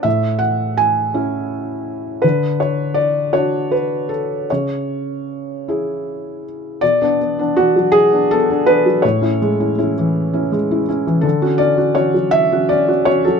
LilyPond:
\new Staff \with { instrumentName = "Felt piano" } { \time 6/8 \key b \dorian \tempo 4. = 54 << { e''8 fis''8 gis''2 | b'8 cis''8 d''8 cis''8 b'8 a'8 | cis''2~ cis''8 r8 | d''4 fis'8 gis'8 a'8 b'8 |
cis''2~ cis''8 r8 | a'8 d''8 cis''8 e''8 d''8 cis''16 a'16 | } \\ { a,4. <cis' e'>4. | d4. <d' fis'>4. | cis4. <e' gis'>4. | b,16 <b d'>16 b16 <b d'>16 <b d'>16 fis8 <b d'>16 b16 <b d'>16 <b d'>16 fis16 |
a,16 <cis' e'>16 gis16 <cis' e'>16 <cis' e'>16 e8 <cis' e'>16 gis16 <cis' e'>16 <cis' e'>16 e16 | d16 <cis' fis'>16 cis'16 <cis' fis'>16 <cis' fis'>16 fis8 <cis' fis'>16 cis'16 <cis' fis'>16 <cis' fis'>16 fis16 | } >> }